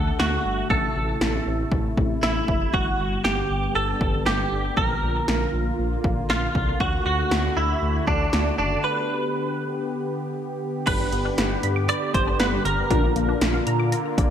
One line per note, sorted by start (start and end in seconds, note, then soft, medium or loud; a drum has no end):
0.00 0.12 D2 medium
0.00 0.66 D3 medium
0.00 2.70 A3 medium
0.00 0.19 A4 loud
0.00 0.68 F#5 medium
0.19 0.37 D2 loud
0.19 0.67 F#4 medium
0.19 snare loud
0.45 0.63 G1 medium
0.70 0.88 A1 loud
0.70 2.72 C3 medium
0.70 2.72 E4 medium
0.70 1.68 A4 medium
0.70 kick loud
0.96 1.13 A1 loud
1.21 1.39 A1 loud
1.21 snare loud
1.47 1.64 A1 loud
1.72 1.90 A1 loud
1.72 kick medium
1.97 2.15 A1 medium
1.97 kick medium
2.23 2.41 A1 loud
2.23 2.75 E4 medium
2.23 snare loud
2.48 2.66 F#1 medium
2.48 kick medium
2.74 2.91 G1 loud
2.74 4.75 D3 medium
2.74 4.75 G3 medium
2.74 4.75 B3 medium
2.74 3.24 F#4 medium
2.74 kick loud
2.99 3.17 G1 loud
3.24 3.42 G1 medium
3.24 3.75 G4 medium
3.24 snare loud
3.50 3.68 G1 loud
3.75 3.93 G1 loud
3.75 4.23 A4 loud
4.01 4.19 G1 medium
4.01 kick medium
4.26 4.44 G1 loud
4.26 4.77 G4 medium
4.26 snare loud
4.52 4.69 G1 medium
4.77 4.95 A#1 loud
4.77 10.83 D3 medium
4.77 6.78 A#3 medium
4.77 6.78 F4 medium
4.77 5.75 A#4 loud
4.77 kick loud
5.02 5.20 A#1 loud
5.28 5.46 A#1 loud
5.28 snare loud
5.53 5.71 A#1 loud
5.79 5.97 A#1 medium
6.04 6.22 A#1 loud
6.04 kick medium
6.30 6.47 A#1 loud
6.30 6.80 F4 medium
6.30 snare loud
6.55 6.73 C2 medium
6.55 kick medium
6.80 6.98 D2 loud
6.80 8.82 A3 medium
6.80 8.82 F#4 medium
6.80 7.04 F#4 medium
6.80 kick loud
7.06 7.24 D2 loud
7.06 7.58 F#4 medium
7.31 7.49 D2 medium
7.31 snare loud
7.57 7.74 D2 medium
7.57 8.04 E4 medium
7.82 8.00 D2 loud
8.07 8.25 D2 loud
8.07 8.55 D4 medium
8.07 kick medium
8.33 8.51 D2 loud
8.33 snare loud
8.58 8.76 F#1 medium
8.58 8.82 D4 medium
8.83 10.85 B3 medium
8.83 10.85 G4 medium
8.83 10.32 B4 medium
10.87 11.05 G1 loud
10.87 10.98 D3 medium
10.87 14.30 D3 medium
10.87 12.88 B3 medium
10.87 12.86 D4 medium
10.87 12.86 G4 medium
10.87 12.88 G4 medium
10.87 12.86 B4 medium
10.87 11.88 B4 medium
10.87 kick loud
10.87 closed hi-hat medium
10.87 crash medium
11.00 11.11 G3 medium
11.12 11.30 G1 loud
11.12 11.23 B3 medium
11.12 closed hi-hat medium
11.25 11.36 D4 loud
11.38 11.56 G1 loud
11.38 snare loud
11.38 closed hi-hat medium
11.51 11.61 G5 medium
11.63 11.90 G2 medium
11.63 11.74 B5 loud
11.63 closed hi-hat medium
11.76 11.87 D6 medium
11.89 12.14 D5 loud
11.89 12.00 B5 medium
11.89 closed hi-hat medium
12.14 12.32 G1 medium
12.14 12.39 C5 medium
12.14 12.25 D5 medium
12.14 kick medium
12.14 closed hi-hat medium
12.27 12.38 D4 medium
12.40 12.57 G1 medium
12.40 12.50 B3 loud
12.40 12.65 B4 medium
12.40 snare loud
12.40 closed hi-hat medium
12.52 12.63 G3 medium
12.65 12.83 G1 medium
12.65 12.76 D3 medium
12.65 13.63 A#4 medium
12.65 closed hi-hat medium
12.90 13.08 A#1 loud
12.90 13.01 D3 medium
12.90 14.30 A#3 medium
12.90 14.30 D4 medium
12.90 14.30 F4 medium
12.90 14.30 A#4 medium
12.90 kick loud
12.90 closed hi-hat medium
13.03 13.14 F3 medium
13.16 13.34 A#1 medium
13.16 13.27 A#3 medium
13.16 closed hi-hat medium
13.29 13.39 D4 loud
13.41 13.59 A#1 loud
13.41 snare loud
13.41 closed hi-hat medium
13.54 13.65 F5 medium
13.67 13.94 A#2 loud
13.67 13.78 A#5 loud
13.67 closed hi-hat medium
13.80 13.90 D6 medium
13.92 14.03 A#5 medium
13.92 closed hi-hat medium
14.18 14.30 A#1 loud
14.18 14.28 D5 medium
14.18 kick medium
14.18 closed hi-hat medium